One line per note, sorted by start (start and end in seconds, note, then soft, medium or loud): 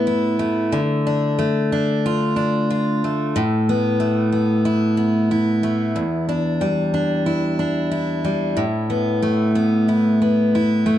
0.00 0.74 A2 medium
0.00 0.39 A3 soft
0.00 0.80 B3 soft
0.07 0.79 E4 medium
0.39 1.38 A3 soft
0.72 3.35 D3 medium
1.07 1.71 D4 medium
1.39 3.04 A3 soft
1.72 2.35 D4 medium
2.06 2.69 F4 medium
2.36 3.41 D4 soft
2.70 3.42 F4 medium
3.04 3.72 A3 soft
3.36 5.97 A2 medium
3.69 4.32 B3 medium
4.00 5.62 A3 soft
4.32 4.97 B3 soft
4.65 5.31 E4 medium
4.97 6.28 B3 soft
5.31 6.32 E4 medium
5.63 6.03 A3 soft
5.96 8.57 E2 medium
6.29 6.93 D4 soft
6.61 8.23 G3 soft
6.94 7.58 D4 medium
7.26 7.91 E4 soft
7.59 8.64 D4 soft
7.91 9.88 E4 medium
8.25 8.64 G3 soft
8.57 10.98 A2 medium
8.90 9.54 B3 soft
9.22 10.86 A3 soft
9.55 10.21 B3 medium
9.88 10.53 E4 medium
10.22 10.98 B3 soft
10.55 10.98 E4 medium
10.86 10.98 A3 soft